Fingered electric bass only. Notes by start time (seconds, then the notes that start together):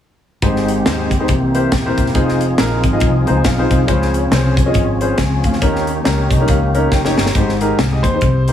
0.42 G#1
0.86 D#2
1.29 C2
1.72 D#1
1.98 E1
2.15 F1
2.59 A#1
2.84 G#1
3.01 C2
3.29 C#2
3.45 B1
3.71 C2
3.89 C#2
4.31 C2
4.75 G#1
5.19 C#2
5.44 D2
5.62 D#2
6.06 C#2
6.31 C2
6.49 C#2
6.92 F#1
7.18 G1
7.35 G#1
7.78 C2
8.04 D#2
8.22 C2